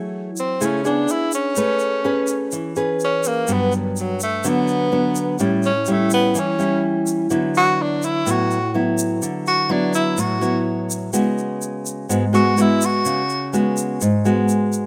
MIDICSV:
0, 0, Header, 1, 4, 480
1, 0, Start_track
1, 0, Tempo, 478469
1, 1571, Time_signature, 4, 2, 24, 8
1, 14912, End_track
2, 0, Start_track
2, 0, Title_t, "Tenor saxophone"
2, 0, Program_c, 0, 66
2, 398, Note_on_c, 0, 60, 74
2, 649, Note_on_c, 0, 61, 68
2, 664, Note_off_c, 0, 60, 0
2, 862, Note_off_c, 0, 61, 0
2, 868, Note_on_c, 0, 62, 78
2, 1121, Note_on_c, 0, 64, 92
2, 1136, Note_off_c, 0, 62, 0
2, 1346, Note_off_c, 0, 64, 0
2, 1352, Note_on_c, 0, 61, 78
2, 2501, Note_off_c, 0, 61, 0
2, 3056, Note_on_c, 0, 61, 81
2, 3280, Note_on_c, 0, 58, 82
2, 3295, Note_off_c, 0, 61, 0
2, 3540, Note_on_c, 0, 59, 86
2, 3555, Note_off_c, 0, 58, 0
2, 3756, Note_off_c, 0, 59, 0
2, 3774, Note_on_c, 0, 50, 46
2, 3934, Note_off_c, 0, 50, 0
2, 4019, Note_on_c, 0, 54, 75
2, 4235, Note_off_c, 0, 54, 0
2, 4247, Note_on_c, 0, 57, 79
2, 4500, Note_on_c, 0, 59, 82
2, 4515, Note_off_c, 0, 57, 0
2, 5435, Note_off_c, 0, 59, 0
2, 5678, Note_on_c, 0, 61, 85
2, 5940, Note_on_c, 0, 57, 74
2, 5955, Note_off_c, 0, 61, 0
2, 6151, Note_off_c, 0, 57, 0
2, 6157, Note_on_c, 0, 59, 78
2, 6410, Note_on_c, 0, 61, 75
2, 6425, Note_off_c, 0, 59, 0
2, 6870, Note_off_c, 0, 61, 0
2, 7598, Note_on_c, 0, 66, 101
2, 7845, Note_on_c, 0, 62, 82
2, 7860, Note_off_c, 0, 66, 0
2, 8079, Note_on_c, 0, 64, 90
2, 8095, Note_off_c, 0, 62, 0
2, 8332, Note_on_c, 0, 66, 85
2, 8347, Note_off_c, 0, 64, 0
2, 8791, Note_off_c, 0, 66, 0
2, 9509, Note_on_c, 0, 66, 88
2, 9753, Note_on_c, 0, 62, 76
2, 9768, Note_off_c, 0, 66, 0
2, 9977, Note_off_c, 0, 62, 0
2, 9983, Note_on_c, 0, 64, 86
2, 10232, Note_on_c, 0, 66, 86
2, 10247, Note_off_c, 0, 64, 0
2, 10701, Note_off_c, 0, 66, 0
2, 12388, Note_on_c, 0, 66, 89
2, 12652, Note_on_c, 0, 64, 81
2, 12667, Note_off_c, 0, 66, 0
2, 12892, Note_on_c, 0, 66, 90
2, 12907, Note_off_c, 0, 64, 0
2, 13591, Note_off_c, 0, 66, 0
2, 14912, End_track
3, 0, Start_track
3, 0, Title_t, "Nylon-string guitar"
3, 0, Program_c, 1, 24
3, 0, Note_on_c, 1, 54, 62
3, 0, Note_on_c, 1, 57, 51
3, 0, Note_on_c, 1, 64, 54
3, 0, Note_on_c, 1, 68, 54
3, 293, Note_off_c, 1, 57, 0
3, 295, Note_off_c, 1, 64, 0
3, 298, Note_off_c, 1, 68, 0
3, 586, Note_off_c, 1, 54, 0
3, 607, Note_on_c, 1, 49, 63
3, 612, Note_on_c, 1, 57, 50
3, 613, Note_on_c, 1, 64, 56
3, 616, Note_on_c, 1, 68, 58
3, 812, Note_off_c, 1, 57, 0
3, 814, Note_off_c, 1, 64, 0
3, 815, Note_off_c, 1, 68, 0
3, 847, Note_on_c, 1, 59, 54
3, 851, Note_on_c, 1, 62, 57
3, 855, Note_on_c, 1, 68, 62
3, 1066, Note_off_c, 1, 49, 0
3, 1550, Note_off_c, 1, 59, 0
3, 1551, Note_off_c, 1, 62, 0
3, 1554, Note_off_c, 1, 68, 0
3, 1573, Note_on_c, 1, 57, 64
3, 1576, Note_on_c, 1, 61, 48
3, 1577, Note_on_c, 1, 68, 53
3, 1584, Note_on_c, 1, 71, 63
3, 2014, Note_off_c, 1, 61, 0
3, 2017, Note_off_c, 1, 68, 0
3, 2017, Note_off_c, 1, 71, 0
3, 2050, Note_on_c, 1, 61, 60
3, 2055, Note_on_c, 1, 68, 58
3, 2062, Note_on_c, 1, 71, 63
3, 2508, Note_off_c, 1, 57, 0
3, 2533, Note_on_c, 1, 52, 64
3, 2733, Note_off_c, 1, 61, 0
3, 2735, Note_off_c, 1, 68, 0
3, 2736, Note_off_c, 1, 71, 0
3, 2772, Note_on_c, 1, 61, 63
3, 2775, Note_on_c, 1, 68, 53
3, 2783, Note_on_c, 1, 71, 66
3, 3453, Note_off_c, 1, 61, 0
3, 3456, Note_off_c, 1, 68, 0
3, 3457, Note_off_c, 1, 71, 0
3, 3468, Note_off_c, 1, 52, 0
3, 3490, Note_on_c, 1, 43, 65
3, 3495, Note_on_c, 1, 54, 53
3, 3502, Note_on_c, 1, 62, 59
3, 3504, Note_on_c, 1, 59, 55
3, 4138, Note_off_c, 1, 54, 0
3, 4140, Note_off_c, 1, 59, 0
3, 4142, Note_off_c, 1, 62, 0
3, 4428, Note_off_c, 1, 43, 0
3, 4458, Note_on_c, 1, 50, 69
3, 4460, Note_on_c, 1, 54, 54
3, 4464, Note_on_c, 1, 59, 55
3, 4468, Note_on_c, 1, 62, 62
3, 4897, Note_off_c, 1, 54, 0
3, 4898, Note_off_c, 1, 59, 0
3, 4901, Note_off_c, 1, 62, 0
3, 4934, Note_on_c, 1, 54, 52
3, 4941, Note_on_c, 1, 59, 52
3, 4941, Note_on_c, 1, 62, 60
3, 5391, Note_off_c, 1, 50, 0
3, 5394, Note_off_c, 1, 54, 0
3, 5395, Note_off_c, 1, 59, 0
3, 5397, Note_off_c, 1, 62, 0
3, 5413, Note_on_c, 1, 45, 61
3, 5415, Note_on_c, 1, 55, 57
3, 5420, Note_on_c, 1, 64, 58
3, 5422, Note_on_c, 1, 61, 58
3, 5722, Note_off_c, 1, 55, 0
3, 5723, Note_off_c, 1, 61, 0
3, 5724, Note_off_c, 1, 64, 0
3, 5895, Note_on_c, 1, 55, 58
3, 5899, Note_on_c, 1, 61, 51
3, 5905, Note_on_c, 1, 64, 56
3, 6348, Note_off_c, 1, 45, 0
3, 6368, Note_on_c, 1, 52, 65
3, 6574, Note_off_c, 1, 55, 0
3, 6576, Note_off_c, 1, 61, 0
3, 6579, Note_off_c, 1, 64, 0
3, 6607, Note_on_c, 1, 55, 53
3, 6612, Note_on_c, 1, 61, 55
3, 6619, Note_on_c, 1, 64, 63
3, 7290, Note_off_c, 1, 55, 0
3, 7293, Note_off_c, 1, 61, 0
3, 7296, Note_off_c, 1, 64, 0
3, 7305, Note_off_c, 1, 52, 0
3, 7326, Note_on_c, 1, 54, 51
3, 7329, Note_on_c, 1, 50, 64
3, 7329, Note_on_c, 1, 59, 51
3, 7336, Note_on_c, 1, 64, 59
3, 8249, Note_off_c, 1, 54, 0
3, 8252, Note_off_c, 1, 59, 0
3, 8253, Note_off_c, 1, 64, 0
3, 8265, Note_off_c, 1, 50, 0
3, 8285, Note_on_c, 1, 45, 68
3, 8291, Note_on_c, 1, 59, 52
3, 8294, Note_on_c, 1, 54, 56
3, 8299, Note_on_c, 1, 64, 61
3, 8600, Note_off_c, 1, 54, 0
3, 8600, Note_off_c, 1, 59, 0
3, 8602, Note_off_c, 1, 64, 0
3, 8772, Note_on_c, 1, 54, 56
3, 8774, Note_on_c, 1, 59, 52
3, 8781, Note_on_c, 1, 64, 60
3, 9225, Note_off_c, 1, 45, 0
3, 9250, Note_on_c, 1, 50, 65
3, 9693, Note_off_c, 1, 54, 0
3, 9693, Note_off_c, 1, 59, 0
3, 9697, Note_off_c, 1, 64, 0
3, 9724, Note_on_c, 1, 54, 62
3, 9730, Note_on_c, 1, 64, 61
3, 9731, Note_on_c, 1, 59, 54
3, 10186, Note_off_c, 1, 50, 0
3, 10205, Note_on_c, 1, 45, 70
3, 10408, Note_off_c, 1, 54, 0
3, 10410, Note_off_c, 1, 59, 0
3, 10411, Note_off_c, 1, 64, 0
3, 10447, Note_on_c, 1, 54, 65
3, 10452, Note_on_c, 1, 59, 56
3, 10456, Note_on_c, 1, 64, 64
3, 11130, Note_off_c, 1, 54, 0
3, 11132, Note_off_c, 1, 59, 0
3, 11134, Note_off_c, 1, 64, 0
3, 11143, Note_off_c, 1, 45, 0
3, 11166, Note_on_c, 1, 49, 67
3, 11168, Note_on_c, 1, 56, 56
3, 11171, Note_on_c, 1, 59, 55
3, 11173, Note_on_c, 1, 66, 59
3, 12089, Note_off_c, 1, 56, 0
3, 12092, Note_off_c, 1, 59, 0
3, 12092, Note_off_c, 1, 66, 0
3, 12104, Note_off_c, 1, 49, 0
3, 12132, Note_on_c, 1, 44, 68
3, 12134, Note_on_c, 1, 56, 53
3, 12137, Note_on_c, 1, 59, 54
3, 12142, Note_on_c, 1, 66, 64
3, 12272, Note_off_c, 1, 56, 0
3, 12274, Note_off_c, 1, 59, 0
3, 12277, Note_off_c, 1, 66, 0
3, 12368, Note_on_c, 1, 56, 70
3, 12376, Note_on_c, 1, 59, 56
3, 12378, Note_on_c, 1, 66, 66
3, 12570, Note_off_c, 1, 56, 0
3, 12574, Note_off_c, 1, 59, 0
3, 12575, Note_off_c, 1, 66, 0
3, 12616, Note_on_c, 1, 56, 58
3, 12620, Note_on_c, 1, 59, 57
3, 12625, Note_on_c, 1, 66, 66
3, 13067, Note_off_c, 1, 44, 0
3, 13093, Note_on_c, 1, 49, 70
3, 13257, Note_off_c, 1, 56, 0
3, 13260, Note_off_c, 1, 59, 0
3, 13262, Note_off_c, 1, 66, 0
3, 13574, Note_on_c, 1, 56, 60
3, 13581, Note_on_c, 1, 59, 57
3, 13585, Note_on_c, 1, 66, 67
3, 14027, Note_off_c, 1, 49, 0
3, 14049, Note_off_c, 1, 56, 0
3, 14052, Note_off_c, 1, 66, 0
3, 14053, Note_off_c, 1, 59, 0
3, 14060, Note_on_c, 1, 44, 75
3, 14297, Note_on_c, 1, 56, 62
3, 14304, Note_on_c, 1, 59, 66
3, 14308, Note_on_c, 1, 66, 66
3, 14912, Note_off_c, 1, 44, 0
3, 14912, Note_off_c, 1, 56, 0
3, 14912, Note_off_c, 1, 59, 0
3, 14912, Note_off_c, 1, 66, 0
3, 14912, End_track
4, 0, Start_track
4, 0, Title_t, "Drums"
4, 369, Note_on_c, 9, 82, 59
4, 469, Note_off_c, 9, 82, 0
4, 615, Note_on_c, 9, 82, 61
4, 716, Note_off_c, 9, 82, 0
4, 854, Note_on_c, 9, 82, 27
4, 954, Note_off_c, 9, 82, 0
4, 1087, Note_on_c, 9, 82, 51
4, 1187, Note_off_c, 9, 82, 0
4, 1324, Note_on_c, 9, 82, 64
4, 1424, Note_off_c, 9, 82, 0
4, 1564, Note_on_c, 9, 82, 61
4, 1664, Note_off_c, 9, 82, 0
4, 1798, Note_on_c, 9, 82, 26
4, 1898, Note_off_c, 9, 82, 0
4, 2281, Note_on_c, 9, 82, 64
4, 2381, Note_off_c, 9, 82, 0
4, 2525, Note_on_c, 9, 82, 64
4, 2625, Note_off_c, 9, 82, 0
4, 2766, Note_on_c, 9, 82, 26
4, 2867, Note_off_c, 9, 82, 0
4, 3010, Note_on_c, 9, 82, 53
4, 3110, Note_off_c, 9, 82, 0
4, 3247, Note_on_c, 9, 82, 63
4, 3347, Note_off_c, 9, 82, 0
4, 3487, Note_on_c, 9, 82, 65
4, 3587, Note_off_c, 9, 82, 0
4, 3733, Note_on_c, 9, 82, 26
4, 3833, Note_off_c, 9, 82, 0
4, 3978, Note_on_c, 9, 82, 52
4, 4078, Note_off_c, 9, 82, 0
4, 4215, Note_on_c, 9, 82, 59
4, 4315, Note_off_c, 9, 82, 0
4, 4453, Note_on_c, 9, 82, 65
4, 4553, Note_off_c, 9, 82, 0
4, 4694, Note_on_c, 9, 82, 25
4, 4794, Note_off_c, 9, 82, 0
4, 5173, Note_on_c, 9, 82, 63
4, 5273, Note_off_c, 9, 82, 0
4, 5406, Note_on_c, 9, 82, 63
4, 5506, Note_off_c, 9, 82, 0
4, 5647, Note_on_c, 9, 82, 27
4, 5747, Note_off_c, 9, 82, 0
4, 5878, Note_on_c, 9, 82, 58
4, 5978, Note_off_c, 9, 82, 0
4, 6125, Note_on_c, 9, 82, 65
4, 6225, Note_off_c, 9, 82, 0
4, 6372, Note_on_c, 9, 82, 65
4, 6472, Note_off_c, 9, 82, 0
4, 6618, Note_on_c, 9, 82, 25
4, 6718, Note_off_c, 9, 82, 0
4, 7089, Note_on_c, 9, 82, 65
4, 7190, Note_off_c, 9, 82, 0
4, 7327, Note_on_c, 9, 82, 66
4, 7427, Note_off_c, 9, 82, 0
4, 7571, Note_on_c, 9, 82, 26
4, 7671, Note_off_c, 9, 82, 0
4, 8051, Note_on_c, 9, 82, 61
4, 8152, Note_off_c, 9, 82, 0
4, 8293, Note_on_c, 9, 82, 64
4, 8394, Note_off_c, 9, 82, 0
4, 8536, Note_on_c, 9, 82, 26
4, 8636, Note_off_c, 9, 82, 0
4, 9011, Note_on_c, 9, 82, 68
4, 9112, Note_off_c, 9, 82, 0
4, 9254, Note_on_c, 9, 82, 69
4, 9354, Note_off_c, 9, 82, 0
4, 9495, Note_on_c, 9, 82, 26
4, 9595, Note_off_c, 9, 82, 0
4, 9972, Note_on_c, 9, 82, 62
4, 10072, Note_off_c, 9, 82, 0
4, 10207, Note_on_c, 9, 82, 69
4, 10307, Note_off_c, 9, 82, 0
4, 10455, Note_on_c, 9, 82, 27
4, 10555, Note_off_c, 9, 82, 0
4, 10938, Note_on_c, 9, 82, 66
4, 11039, Note_off_c, 9, 82, 0
4, 11169, Note_on_c, 9, 82, 67
4, 11270, Note_off_c, 9, 82, 0
4, 11418, Note_on_c, 9, 82, 28
4, 11518, Note_off_c, 9, 82, 0
4, 11656, Note_on_c, 9, 82, 58
4, 11757, Note_off_c, 9, 82, 0
4, 11897, Note_on_c, 9, 82, 64
4, 11997, Note_off_c, 9, 82, 0
4, 12140, Note_on_c, 9, 82, 65
4, 12241, Note_off_c, 9, 82, 0
4, 12382, Note_on_c, 9, 82, 27
4, 12482, Note_off_c, 9, 82, 0
4, 12616, Note_on_c, 9, 82, 57
4, 12716, Note_off_c, 9, 82, 0
4, 12855, Note_on_c, 9, 82, 67
4, 12955, Note_off_c, 9, 82, 0
4, 13096, Note_on_c, 9, 82, 65
4, 13196, Note_off_c, 9, 82, 0
4, 13337, Note_on_c, 9, 82, 27
4, 13438, Note_off_c, 9, 82, 0
4, 13580, Note_on_c, 9, 82, 61
4, 13680, Note_off_c, 9, 82, 0
4, 13814, Note_on_c, 9, 82, 66
4, 13915, Note_off_c, 9, 82, 0
4, 14055, Note_on_c, 9, 82, 66
4, 14156, Note_off_c, 9, 82, 0
4, 14298, Note_on_c, 9, 82, 26
4, 14398, Note_off_c, 9, 82, 0
4, 14535, Note_on_c, 9, 82, 52
4, 14635, Note_off_c, 9, 82, 0
4, 14775, Note_on_c, 9, 82, 67
4, 14875, Note_off_c, 9, 82, 0
4, 14912, End_track
0, 0, End_of_file